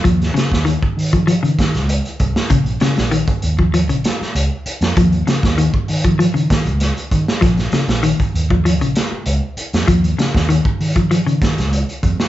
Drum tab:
HH |xxx-x-oxxxxxxxx-|xxxxxxx-xxx-x-xx|xxx-x-oxxxxxxxx-|xxxxxxx-xxx-x-xx|
SD |-ooo------oo---o|--oo------oo---o|--oo------o-o--o|oooo------o----o|
BD |o--o-o-o--o---o-|o----o-o--------|o--o-o-o--o---o-|o----o-o--------|

HH |xxx-x-oxxxxxxxx-|
SD |--oo------oo---o|
BD |o--o-o-o--o---o-|